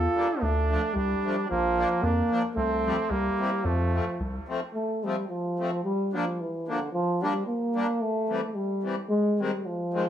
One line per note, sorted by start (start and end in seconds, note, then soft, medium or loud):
0.00 0.42 F4 medium
0.00 0.42 A4 medium
0.15 0.27 G3 medium
0.15 0.28 A#3 soft
0.15 0.28 D4 medium
0.41 0.77 D2 medium
0.41 0.95 A3 loud
0.41 0.96 D4 medium
0.70 0.81 F3 medium
0.70 0.82 A3 medium
0.70 0.82 D4 medium
0.94 1.15 C2 medium
0.94 1.49 G3 medium
0.94 1.49 D4 medium
1.24 1.36 F3 soft
1.24 1.36 A3 soft
1.24 1.36 D4 medium
1.49 1.86 A#1 medium
1.49 2.04 F3 loud
1.49 2.06 A#3 medium
1.76 1.89 F3 medium
1.76 1.89 A#3 medium
1.76 1.89 D4 medium
2.02 2.22 F2 medium
2.02 2.44 A#3 loud
2.02 2.45 D4 medium
2.30 2.42 F3 medium
2.30 2.42 A#3 medium
2.30 2.42 D4 medium
2.56 2.92 C2 medium
2.56 3.12 A3 loud
2.56 3.11 C4 medium
2.85 2.96 F3 medium
2.85 2.97 G3 medium
2.85 2.97 C4 medium
3.10 3.29 C2 medium
3.10 3.66 G3 medium
3.10 3.67 A#3 medium
3.39 3.50 E3 soft
3.39 3.51 G3 soft
3.39 3.51 C4 medium
3.64 4.00 F2 medium
3.64 4.19 F3 medium
3.64 4.20 A3 medium
3.93 4.05 F3 medium
3.93 4.05 A3 soft
3.93 4.05 C4 medium
4.20 4.39 C2 medium
4.48 4.60 F3 medium
4.48 4.60 A3 medium
4.48 4.60 C4 medium
4.74 5.05 A3 medium
5.04 5.16 F3 soft
5.04 5.28 G3 medium
5.04 5.16 A3 soft
5.04 5.16 C4 medium
5.29 5.80 F3 medium
5.59 5.70 F3 soft
5.59 5.71 A3 soft
5.59 5.71 C4 medium
5.84 6.17 G3 loud
6.13 6.25 F3 medium
6.13 6.42 F3 medium
6.13 6.25 A#3 medium
6.13 6.25 D4 medium
6.40 6.72 E3 medium
6.68 6.92 D3 medium
6.68 6.79 F3 soft
6.68 6.80 A#3 soft
6.68 6.80 D4 soft
6.93 7.24 F3 loud
7.22 7.33 G3 medium
7.22 7.46 G3 medium
7.22 7.33 A#3 soft
7.22 7.34 D4 medium
7.46 8.03 A#3 medium
7.75 7.87 G3 medium
7.75 7.87 A#3 soft
7.75 7.87 D4 medium
8.01 8.46 A3 loud
8.29 8.41 E3 medium
8.29 8.41 G3 soft
8.29 8.41 C4 medium
8.47 8.56 A3 medium
8.55 8.97 G3 medium
8.83 8.95 E3 soft
8.83 8.95 G3 soft
8.83 8.96 C4 medium
9.10 9.42 G#3 loud
9.39 9.51 D#3 medium
9.39 9.67 G3 medium
9.39 9.51 G#3 medium
9.39 9.52 C4 medium
9.66 10.09 F3 medium
9.93 10.05 D#3 medium
9.93 10.05 G#3 soft
9.93 10.06 C4 medium